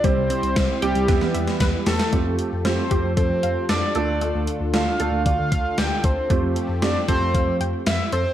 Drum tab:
HH |x-xxx-xxx-xxx-ox|x-x-x-x-x-x-x-x-|x-x-x-x-x-x-x-x-|x-x-x-x-x-x-x-x-|
SD |----o---oo-oo-oo|----o-------o---|----o-------o---|----o-------o---|
BD |o---o---o---o---|o-----o-o-------|--------o-o---o-|o-----o-o-------|